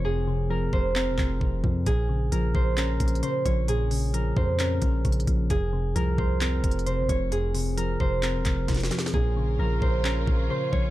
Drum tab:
HH |------------------------------------------------------------------------------------------------|x-----------------------x-----------------------x-----------x---x---x---x-----------x-----------|x-----------o-----------x-----------------------x-----------x-----------x---x---x---x-----------|x-----------------------x-----------------------x-----------x---x---x---x-----------x-----------|
CP |------------------------------------------------x-----------x-----------------------------------|------------------------------------------------x-----------------------------------------------|------------------------------------------------x-----------------------------------------------|------------------------------------------------x-----------------------------------------------|
SD |------------------------------------------------------------------------------------------------|------------------------------------------------------------------------------------------------|------------------------------------------------------------------------------------------------|------------------------------------------------------------------------------------------------|
BD |------------------------------------o-----------------------o-----------o-----------o-----------|o-----------------------------------o-----------------------o-----------------------o-----------|------------------------------------o-----------------------o-----------o-----------o-----------|o-----------------------------------o-----------------------o-----------------------o-----------|

HH |x-----------o-----------x-----------------------x-----------x-----------x--x--x--x--x-----------|------------------------------------------------------------------------------------------------|
CP |------------------------------------------------x-----------x-----------------------------------|------------------------------------------------x-----------------------------------------------|
SD |------------------------------------------------------------------------o---o---o---o---o---o---|------------------------------------------------------------------------------------------------|
BD |------------------------------------o-----------------------o-----------o-----------------------|o-----------------------------------o-----------------------o-----------------------o-----------|